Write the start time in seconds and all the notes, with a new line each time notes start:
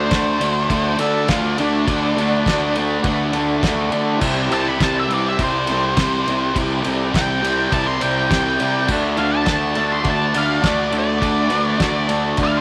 Already playing: D4 C5
0.09 D2 D3 A3 D4 F#4 A4, kick, snare, ride
0.38 D2 D3 A3 D4 F#4 A4, ride
0.69 D2 D3 A3 D4 F#4 A4, kick, ride
0.98 D2 D3 A3 D4 A4, ride
1.02 F#4 A4
1.28 D2 D3 A3 D4 F4 F#4 A4, kick, snare, ride
1.58 D2 D3 A3 D4 F#4 A4, ride
1.86 D2 D3 A3 D4 F#4 C5, kick, ride
2.13 D2 D4 F#4 A4
2.17 D3 A3 D4, ride
2.44 D2 D3 A3 D4 F#4 A4, kick, snare, ride
2.49 D4
2.73 D3 A3 D4 F#4 A4, ride
2.77 D4
3.02 D2 D3 D4 F#4 B4, kick, ride
3.07 A3 D4
3.32 D2 D3 A3 D4 F#4 A4, ride
3.59 D2 D3 A3 D4 F#4 A4, kick, ride
3.64 D4, snare
3.87 D3 D4 F#4 A4
3.92 A3 D4, ride
4.14 E4 G4 C5
4.19 C2 C3 G3 C4, kick, crash
4.45 E4 G4 C5
4.50 C2 C3 G3 C4 A5, ride
4.68 B5
4.76 C2 C3 E4 G4 C5
4.80 G3 C4 A5, kick, snare, ride
5.00 B4 E5
5.04 E4 G4
5.08 C2 C3 G3 C4, ride
5.14 D5
5.28 E4 G4 C5 E5
5.39 C2 C3 G3 C4, kick, ride
5.44 C5
5.65 C2 E4 G4 A4, ride
5.70 C3 G3 C4
5.95 C2 C3 G3 E4 G4 C5, kick, snare, ride
6.00 C4
6.27 C2 C3 G3 C4 E4 G4 C5, ride
6.55 C2 C3 G3 C4 E4 G4 C5, kick, ride
6.82 C2 C3 G3 C4 G4 A4, ride
6.87 E4
7.13 C2 C3 G3 C4 E4 G4, kick, snare, ride
7.17 C5 G5
7.41 C3 G3 C4 E4 G4, ride
7.45 C5
7.70 C2 C3 G3 C4 E4 G4 C5 A5, kick, ride
7.86 C6
7.99 C3 G3 C4 G5, ride
8.04 C2 E4 G4 C5
8.29 C2 C3 G3 C4 E4 G4 C5 G5, kick, snare, ride
8.57 C3 E4 G4 D5, ride
8.61 C3 G3 C4
8.84 D2 F#4 A4 D5, crash
8.89 D3 A3 D4, kick
9.16 D2 D3 A3 D4 F#4 A4 D5 F5, ride
9.36 A5
9.45 D2 D3 A3 D4 F#4 A4 D5, kick, snare, ride
9.74 D2 D3 A3 D4 F#4 A4 E5, ride
9.92 C6
10.02 D2 D3 A3 D4 F#4 A4 D5, kick, ride
10.10 A5
10.33 D2 D3 A3 D4 F#4 A4 D5, ride
10.38 F5
10.58 D3 A3 D4 F#4 A4 D5
10.64 D2 D5, kick, snare, ride
10.90 D2 D3 A3 D4 F#4 A4 D5, ride
10.99 D5
11.16 F#4 A4 D5
11.21 D2 D3 A3 D4, kick, ride
11.46 D3 A3 F#4 A4 B4, ride
11.51 D2 D4
11.79 D2 D3 A3 D4 F#4 A4 D5, kick, snare, ride
12.06 D3 A3 D4 F#4 A4 D5, ride
12.37 D2 D3 A3 D4 F#4 A4 D5, kick, ride
12.44 F5
12.57 C5